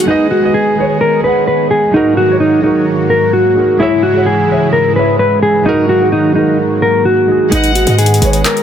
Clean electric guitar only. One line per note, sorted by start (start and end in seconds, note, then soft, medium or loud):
0.08 0.29 D#4 loud
0.31 0.52 F#4 medium
0.54 0.98 G#4 medium
1.01 1.22 A#4 medium
1.24 1.46 B4 medium
1.48 1.69 B4 medium
1.71 1.92 G#4 medium
1.94 2.15 D#4 loud
2.17 2.39 F#4 loud
2.40 2.62 D#4 medium
2.64 2.85 D#4 medium
3.10 3.32 A#4 medium
3.33 3.77 F#4 medium
3.80 4.01 E4 loud
4.03 4.25 F#4 medium
4.26 4.70 G#4 medium
4.73 4.94 A#4 medium
4.96 5.18 B4 medium
5.19 5.41 B4 medium
5.42 5.64 G#4 medium
5.66 5.87 D#4 loud
5.89 6.11 F#4 medium
6.12 6.34 D#4 medium
6.35 6.57 D#4 medium
6.82 7.04 A#4 medium
7.05 7.49 F#4 medium
7.52 7.73 D#4 loud
7.75 7.97 F#4 medium
7.98 8.42 G#4 medium
8.45 8.63 A#4 medium